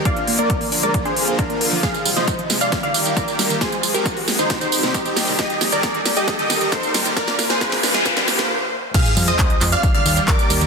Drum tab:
CC |----------------|----------------|----------------|----------------|
HH |xxoxxooxxxoxxxoo|-xoxxxoxxxoxxxox|xxoxxooxxxoxxxoo|xxoxxxoxxxoxxxox|
TB |----------------|xxxxx-xxx-xxxxxx|xxxxx-xxxxxxxxxx|xxxxx-xxx-xxxxxx|
CP |----------------|----------------|----------------|----------------|
SD |----------------|o--o--o-o-----o-|o-----o-o--o--o-|o-o-o-o-o-o-o-o-|
BD |o---o---o---o---|o---o---o---o---|o---o---o---o---|o---o---o---o---|

CC |----------------|x---------------|
HH |xxoxxoo-xxo-----|xxoxxxoxxxoxxxox|
TB |xxxxxxxxxxxx----|xxxxx-xxx-xxxxxx|
CP |----------------|----x-x-----x---|
SD |oooooooooooo----|----------------|
BD |o---o---o-------|o---o---o---o---|